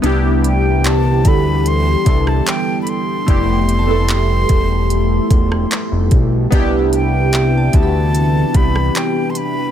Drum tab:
HH |x-x-x-x-x-x-x-x-|x-x-x-x-x-x-x-x-|x-x-x-x-x-x-x-x-|
CP |----x-------x---|----x-------x---|----x-------x---|
SD |-----------r----|-----------r----|-----------r----|
BD |------o---o-----|o-----o---o---o-|o-----o---o-----|